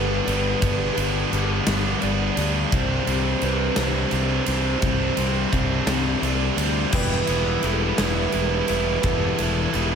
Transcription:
0.00 0.19 G1 medium
0.00 0.60 G2 medium
0.00 0.61 G2 medium
0.00 0.60 D3 medium
0.00 0.61 D3 medium
0.00 0.28 G3 medium
0.00 0.26 B3 medium
0.00 0.27 B3 medium
0.00 0.25 D4 medium
0.00 0.27 D4 loud
0.00 0.25 B4 medium
0.25 0.53 G1 loud
0.25 0.61 G3 medium
0.25 0.61 B3 medium
0.25 0.63 D4 medium
0.25 0.96 B4 medium
0.25 ride medium
0.60 0.89 G1 loud
0.60 1.31 G2 loud
0.60 1.29 D3 loud
0.60 0.97 G3 loud
0.60 0.95 B3 loud
0.60 0.94 D4 loud
0.60 kick loud
0.60 ride loud
0.95 1.24 G1 loud
0.95 1.31 G3 medium
0.95 1.31 B3 medium
0.95 1.33 D4 medium
0.95 ride medium
1.30 1.59 G1 loud
1.30 1.99 D3 medium
1.30 1.68 G3 medium
1.30 1.65 B3 medium
1.30 1.65 D4 loud
1.30 ride medium
1.65 1.93 G1 loud
1.65 2.71 D3 medium
1.65 2.01 G3 medium
1.65 2.01 B3 medium
1.65 2.03 D4 medium
1.65 snare loud
1.65 ride loud
1.69 2.71 G2 medium
2.00 2.29 G1 loud
2.00 2.69 D3 medium
2.00 2.38 G3 medium
2.00 2.35 B3 medium
2.00 2.35 D4 medium
2.00 2.72 D5 medium
2.00 ride medium
2.35 2.64 D2 loud
2.35 2.72 G3 medium
2.35 2.70 B3 medium
2.35 2.74 D4 medium
2.35 ride medium
2.71 2.99 C2 loud
2.71 3.41 C3 loud
2.71 3.08 G3 loud
2.71 3.07 C4 loud
2.71 3.05 D4 loud
2.71 3.42 C5 medium
2.71 kick loud
2.71 ride loud
3.05 3.33 C2 loud
3.05 3.42 G3 medium
3.05 3.43 C4 medium
3.05 3.44 D4 medium
3.05 ride medium
3.41 3.69 C2 medium
3.41 4.10 C3 medium
3.41 3.79 G3 medium
3.41 3.76 C4 medium
3.41 3.75 D4 medium
3.41 3.77 B4 medium
3.41 ride medium
3.76 4.04 C2 loud
3.76 4.11 G3 medium
3.76 4.12 C4 medium
3.76 4.13 D4 medium
3.76 4.47 C5 medium
3.76 snare loud
3.76 ride loud
3.80 4.82 C3 medium
4.11 4.39 C2 medium
4.11 4.79 C3 medium
4.11 4.48 G3 medium
4.11 4.46 C4 medium
4.11 4.45 D4 medium
4.11 ride medium
4.46 4.74 C2 loud
4.46 4.81 G3 medium
4.46 4.81 C4 medium
4.46 4.82 D4 medium
4.46 5.18 C5 medium
4.46 ride medium
4.80 5.09 C2 loud
4.80 5.49 C3 loud
4.80 5.17 G3 loud
4.80 5.15 C4 loud
4.80 5.14 D4 loud
4.80 kick loud
4.80 ride loud
5.15 5.44 C2 medium
5.15 5.50 G3 medium
5.15 5.51 C4 medium
5.15 5.52 D4 medium
5.15 ride medium
5.50 5.79 C2 medium
5.50 6.20 C3 medium
5.50 5.88 G3 medium
5.50 5.85 C4 medium
5.50 5.84 D4 medium
5.50 kick medium
5.50 ride medium
5.85 6.13 C2 loud
5.85 6.91 C3 medium
5.85 6.22 G3 medium
5.85 6.22 C4 medium
5.85 6.23 D4 medium
5.85 snare loud
5.85 ride loud
6.21 6.49 C2 medium
6.21 6.90 C3 medium
6.21 6.58 G3 medium
6.21 6.56 C4 medium
6.21 6.55 D4 medium
6.21 6.93 D5 medium
6.21 ride medium
6.56 6.84 D2 loud
6.56 6.91 G3 medium
6.56 6.91 C4 medium
6.56 6.90 D4 medium
6.56 ride loud
6.91 7.20 E1 loud
6.91 7.61 E3 loud
6.91 7.30 G3 medium
6.91 7.28 B3 loud
6.91 7.26 E4 loud
6.91 7.63 B4 medium
6.91 9.95 G5 medium
6.91 kick loud
6.91 crash loud
6.95 9.95 E4 medium
6.95 9.03 B4 medium
7.27 7.55 E1 medium
7.27 7.63 G3 medium
7.27 7.64 B3 medium
7.27 7.65 E4 medium
7.27 ride medium
7.62 7.90 E1 medium
7.62 8.32 E3 medium
7.62 7.99 G3 medium
7.62 7.98 B3 loud
7.62 7.97 E4 medium
7.62 7.99 A4 medium
7.62 ride medium
7.97 8.25 E1 loud
7.97 9.04 E3 medium
7.97 8.32 G3 medium
7.97 8.33 B3 medium
7.97 8.34 E4 medium
7.97 8.68 B4 medium
7.97 snare loud
7.97 ride loud
8.32 8.60 E1 medium
8.32 9.01 E3 medium
8.32 8.69 G3 medium
8.32 8.68 B3 medium
8.32 8.67 E4 medium
8.32 ride medium
8.67 8.96 E1 loud
8.67 9.02 G3 medium
8.67 9.03 B3 medium
8.67 9.04 E4 medium
8.67 9.39 B4 medium
8.67 ride medium
9.01 9.30 E1 loud
9.01 9.72 E3 medium
9.01 9.39 G3 loud
9.01 9.37 B3 loud
9.01 9.37 E4 loud
9.01 kick loud
9.01 ride loud
9.06 9.95 A4 medium
9.37 9.66 E1 medium
9.37 9.72 G3 medium
9.37 9.73 B3 medium
9.37 9.75 E4 medium
9.37 ride medium
9.72 9.95 E1 loud
9.72 9.95 E3 medium
9.72 9.95 G3 medium
9.72 9.95 B3 medium
9.72 9.95 E4 medium
9.72 ride medium

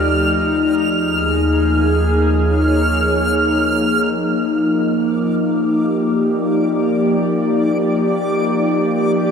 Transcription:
0.00 0.64 D#2 medium
0.00 4.12 F3 medium
0.00 0.69 A3 medium
0.00 9.31 D#4 medium
0.00 0.69 G4 medium
0.00 0.69 D5 medium
0.00 4.15 F6 medium
0.68 4.09 D#2 medium
0.99 4.14 G#4 medium
1.07 9.31 A#3 medium
2.22 4.13 C#5 medium
4.13 9.31 F3 medium
4.13 9.31 D6 medium
5.56 9.31 G4 medium
6.09 9.31 D5 medium

